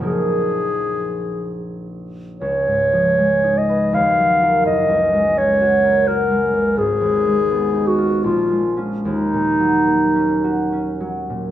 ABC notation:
X:1
M:3/4
L:1/8
Q:1/4=78
K:Ebm
V:1 name="Clarinet"
A4 z2 | d3 e f2 | e2 d2 B2 | A3 G F z |
E4- E z |]
V:2 name="Harp" clef=bass
[B,,,F,B,EFAB]6 | (3D,, A,, F, (3A, E c (3E,, G, [FB] | (3G,,, D,, A, (3D G B (3G A, D,, | (3A,,, E,, A, (3C E F (3B,,, A, [DF] |
(3E,, B,, G, (3B, D G (3D G, B,, |]